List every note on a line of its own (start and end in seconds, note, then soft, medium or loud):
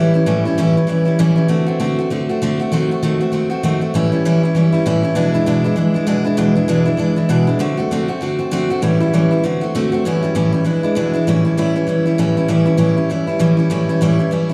0.00 0.15 A2 medium
0.00 0.15 E3 medium
0.00 0.15 G3 loud
0.00 0.14 C#4 medium
0.00 0.13 E4 loud
0.14 0.26 G3 medium
0.14 0.26 C#4 medium
0.14 0.26 E4 medium
0.26 0.45 A2 medium
0.26 0.45 E3 medium
0.26 0.45 G3 medium
0.26 0.45 C#4 medium
0.26 0.44 E4 medium
0.45 0.57 G3 medium
0.45 0.58 C#4 medium
0.45 0.58 E4 medium
0.58 0.76 A2 medium
0.58 0.76 E3 medium
0.58 0.76 G3 medium
0.58 0.76 C#4 loud
0.58 0.76 E4 loud
0.77 0.87 G3 soft
0.77 0.88 C#4 medium
0.77 0.88 E4 medium
0.87 1.06 E3 medium
0.87 1.06 G3 medium
0.87 1.05 C#4 medium
0.87 1.04 E4 medium
1.05 1.18 G3 soft
1.05 1.19 C#4 medium
1.05 1.18 E4 medium
1.19 1.37 A2 medium
1.19 1.37 E3 loud
1.19 1.37 G3 medium
1.19 1.36 C#4 loud
1.19 1.34 E4 loud
1.36 1.49 G3 medium
1.36 1.49 C#4 medium
1.36 1.49 E4 medium
1.48 1.67 D3 medium
1.48 1.68 A3 loud
1.48 1.67 C4 medium
1.48 1.65 F#4 medium
1.66 1.79 A3 soft
1.66 1.79 C4 medium
1.66 1.79 F#4 medium
1.80 1.98 D3 medium
1.80 1.98 A3 medium
1.80 1.99 C4 medium
1.80 1.97 F#4 loud
1.99 2.10 A3 soft
1.99 2.10 C4 medium
1.99 2.11 F#4 medium
2.10 2.29 D3 medium
2.10 2.29 A3 medium
2.10 2.29 C4 medium
2.10 2.28 F#4 medium
2.29 2.41 A3 soft
2.29 2.42 C4 medium
2.29 2.42 F#4 medium
2.42 2.60 D3 medium
2.42 2.60 A3 medium
2.42 2.60 C4 loud
2.42 2.58 F#4 loud
2.60 2.71 A3 soft
2.60 2.72 C4 medium
2.60 2.72 F#4 medium
2.72 2.90 D#3 medium
2.72 2.91 A3 medium
2.72 2.91 C4 medium
2.72 2.90 F#4 loud
2.91 3.02 A3 medium
2.91 3.02 C4 medium
2.91 3.03 F#4 medium
3.03 3.21 D#3 medium
3.03 3.21 A3 medium
3.03 3.20 C4 medium
3.03 3.19 F#4 medium
3.21 3.31 A3 soft
3.21 3.32 C4 medium
3.21 3.33 F#4 medium
3.32 3.51 D#3 medium
3.32 3.51 A3 medium
3.32 3.50 C4 medium
3.32 3.49 F#4 medium
3.50 3.62 A3 medium
3.50 3.63 C4 medium
3.50 3.63 F#4 medium
3.63 3.82 D#3 loud
3.63 3.81 A3 loud
3.63 3.81 C4 loud
3.63 3.80 F#4 loud
3.81 3.95 A3 medium
3.81 3.95 C4 medium
3.81 3.94 F#4 medium
3.94 4.12 A2 medium
3.94 4.13 E3 medium
3.94 4.12 G3 medium
3.94 4.12 C#4 loud
3.94 4.11 E4 loud
4.12 4.25 G3 medium
4.12 4.24 C#4 medium
4.12 4.25 E4 medium
4.25 4.43 A2 medium
4.25 4.44 E3 medium
4.25 4.44 G3 loud
4.25 4.44 C#4 loud
4.25 4.42 E4 loud
4.43 4.55 G3 medium
4.43 4.55 C#4 medium
4.43 4.56 E4 medium
4.55 4.74 E3 medium
4.55 4.73 G3 medium
4.55 4.72 C#4 medium
4.55 4.71 E4 medium
4.72 4.85 G3 medium
4.72 4.85 C#4 medium
4.72 4.86 E4 medium
4.86 5.04 A2 medium
4.86 5.04 E3 medium
4.86 5.04 G3 loud
4.86 5.03 C#4 medium
4.86 5.02 E4 loud
5.03 5.16 G3 medium
5.03 5.15 C#4 medium
5.03 5.15 E4 medium
5.15 5.34 E2 medium
5.15 5.34 B2 medium
5.15 5.34 E3 medium
5.15 5.34 G#3 medium
5.15 5.34 D4 loud
5.15 5.33 E4 loud
5.34 5.46 E3 soft
5.34 5.46 G#3 medium
5.34 5.46 D4 medium
5.34 5.46 E4 medium
5.46 5.65 E2 medium
5.46 5.65 B2 medium
5.46 5.65 E3 medium
5.46 5.64 G#3 medium
5.46 5.64 D4 loud
5.46 5.63 E4 medium
5.64 5.74 E3 medium
5.64 5.75 G#3 medium
5.64 5.76 D4 medium
5.64 5.76 E4 medium
5.76 5.95 E3 medium
5.76 5.95 G#3 medium
5.76 5.94 D4 medium
5.76 5.93 E4 medium
5.94 6.06 E3 soft
5.94 6.06 G#3 medium
5.94 6.06 D4 medium
5.94 6.06 E4 medium
6.06 6.26 E2 medium
6.06 6.26 B2 medium
6.06 6.26 E3 medium
6.06 6.25 G#3 loud
6.06 6.24 D4 loud
6.06 6.23 E4 loud
6.24 6.36 E3 medium
6.24 6.37 G#3 medium
6.24 6.37 D4 medium
6.24 6.37 E4 medium
6.37 6.56 E2 medium
6.37 6.56 B2 medium
6.37 6.56 E3 medium
6.37 6.55 G#3 loud
6.37 6.55 D4 medium
6.37 6.54 E4 loud
6.55 6.68 E3 medium
6.55 6.68 G#3 medium
6.55 6.68 D4 medium
6.55 6.68 E4 medium
6.68 6.87 E2 medium
6.68 6.87 B2 medium
6.68 6.87 E3 loud
6.68 6.86 G#3 loud
6.68 6.85 D4 loud
6.68 6.84 E4 loud
6.85 6.96 E3 medium
6.85 6.97 G#3 soft
6.85 6.98 D4 medium
6.85 6.98 E4 medium
6.97 7.17 E3 medium
6.97 7.16 G#3 medium
6.97 7.16 D4 medium
6.97 7.15 E4 medium
7.16 7.28 E3 medium
7.16 7.28 G#3 medium
7.16 7.29 D4 medium
7.16 7.29 E4 medium
7.29 7.48 E2 medium
7.29 7.48 B2 medium
7.29 7.48 E3 medium
7.29 7.47 G#3 medium
7.29 7.46 D4 medium
7.29 7.46 E4 loud
7.47 7.59 E3 soft
7.47 7.60 G#3 medium
7.47 7.60 D4 medium
7.47 7.60 E4 medium
7.59 7.78 D3 medium
7.59 7.78 A3 medium
7.59 7.77 C4 medium
7.59 7.76 F#4 medium
7.77 7.91 A3 soft
7.77 7.91 C4 medium
7.77 7.91 F#4 medium
7.91 8.10 D3 medium
7.91 8.09 A3 medium
7.91 8.08 C4 loud
7.91 8.07 F#4 loud
8.08 8.21 A3 soft
8.08 8.21 C4 medium
8.08 8.22 F#4 medium
8.21 8.40 D3 medium
8.21 8.39 A3 medium
8.21 8.38 C4 medium
8.21 8.38 F#4 medium
8.39 8.51 A3 medium
8.39 8.52 C4 medium
8.39 8.52 F#4 medium
8.51 8.70 D3 loud
8.51 8.71 A3 medium
8.51 8.70 C4 loud
8.51 8.69 F#4 loud
8.70 8.82 A3 soft
8.70 8.83 C4 medium
8.70 8.83 F#4 medium
8.82 9.01 A2 medium
8.82 9.01 E3 medium
8.82 9.01 G3 medium
8.82 9.00 C#4 medium
8.82 8.99 E4 loud
9.00 9.13 G3 medium
9.00 9.13 C#4 medium
9.00 9.13 E4 medium
9.13 9.32 A2 medium
9.13 9.32 E3 medium
9.13 9.32 G3 loud
9.13 9.31 C#4 loud
9.13 9.30 E4 medium
9.31 9.44 G3 soft
9.31 9.44 C#4 medium
9.31 9.44 E4 medium
9.44 9.62 D3 medium
9.44 9.62 A3 medium
9.44 9.62 C4 medium
9.44 9.60 F#4 medium
9.61 9.74 A3 medium
9.61 9.74 C4 medium
9.61 9.74 F#4 medium
9.75 9.93 D3 medium
9.75 9.93 A3 loud
9.75 9.92 C4 loud
9.75 9.91 F#4 loud
9.92 10.06 A3 medium
9.92 10.06 C4 medium
9.92 10.05 F#4 medium
10.05 10.24 A2 medium
10.05 10.24 E3 medium
10.05 10.23 G3 medium
10.05 10.23 C#4 medium
10.05 10.21 E4 loud
10.22 10.34 G3 medium
10.22 10.35 C#4 medium
10.22 10.35 E4 medium
10.35 10.54 A2 medium
10.35 10.54 E3 medium
10.35 10.53 G3 medium
10.35 10.53 C#4 loud
10.35 10.51 E4 medium
10.52 10.65 G3 medium
10.52 10.65 C#4 medium
10.52 10.65 E4 medium
10.64 10.84 E3 medium
10.64 10.83 G#3 medium
10.64 10.83 D4 medium
10.64 10.82 E4 medium
10.83 10.95 E3 medium
10.83 10.96 G#3 medium
10.83 10.95 D4 medium
10.83 10.95 E4 medium
10.95 11.14 E2 loud
10.95 11.15 B2 loud
10.95 11.14 E3 medium
10.95 11.14 G#3 medium
10.95 11.13 D4 loud
10.95 11.12 E4 loud
11.14 11.27 E3 soft
11.14 11.27 G#3 medium
11.14 11.27 D4 medium
11.14 11.27 E4 medium
11.27 11.45 A2 medium
11.27 11.46 E3 medium
11.27 11.46 G3 medium
11.27 11.45 C#4 loud
11.27 11.44 E4 loud
11.45 11.57 G3 medium
11.45 11.57 C#4 medium
11.45 11.58 E4 medium
11.57 11.76 A2 medium
11.57 11.76 E3 medium
11.57 11.76 G3 loud
11.57 11.75 C#4 medium
11.57 11.74 E4 loud
11.76 11.86 G3 soft
11.76 11.87 C#4 medium
11.76 11.88 E4 medium
11.87 12.06 E3 medium
11.87 12.06 G3 medium
11.87 12.06 C#4 medium
11.87 12.04 E4 medium
12.06 12.17 G3 medium
12.06 12.18 C#4 medium
12.06 12.19 E4 medium
12.18 12.37 A2 medium
12.18 12.37 E3 medium
12.18 12.37 G3 medium
12.18 12.37 C#4 loud
12.18 12.36 E4 loud
12.37 12.48 G3 soft
12.37 12.49 C#4 medium
12.37 12.49 E4 medium
12.48 12.67 A2 loud
12.48 12.67 E3 medium
12.48 12.66 G3 medium
12.48 12.66 C#4 medium
12.48 12.64 E4 loud
12.66 12.77 G3 medium
12.66 12.77 C#4 medium
12.66 12.78 E4 medium
12.77 12.97 A2 medium
12.77 12.97 E3 medium
12.77 12.97 G3 medium
12.77 12.97 C#4 loud
12.77 12.95 E4 loud
12.97 13.10 G3 soft
12.97 13.09 C#4 medium
12.97 13.10 E4 medium
13.10 13.28 E3 medium
13.10 13.28 G3 medium
13.10 13.27 C#4 medium
13.10 13.26 E4 medium
13.27 13.39 G3 medium
13.27 13.39 C#4 medium
13.27 13.39 E4 medium
13.39 13.58 A2 medium
13.39 13.59 E3 medium
13.39 13.58 G3 loud
13.39 13.57 C#4 loud
13.39 13.56 E4 medium
13.57 13.70 G3 soft
13.57 13.70 C#4 medium
13.57 13.70 E4 medium
13.70 13.89 A2 medium
13.70 13.89 E3 medium
13.70 13.89 G3 loud
13.70 13.89 C#4 medium
13.70 13.88 E4 medium
13.89 14.01 G3 soft
13.89 14.01 C#4 medium
13.89 14.02 E4 medium
14.01 14.20 A2 medium
14.01 14.20 E3 loud
14.01 14.20 G3 medium
14.01 14.19 C#4 loud
14.01 14.18 E4 loud
14.19 14.31 G3 soft
14.19 14.31 C#4 medium
14.19 14.32 E4 medium
14.31 14.50 E3 medium
14.31 14.50 G3 medium
14.31 14.50 C#4 medium
14.31 14.48 E4 medium
14.49 14.54 E4 medium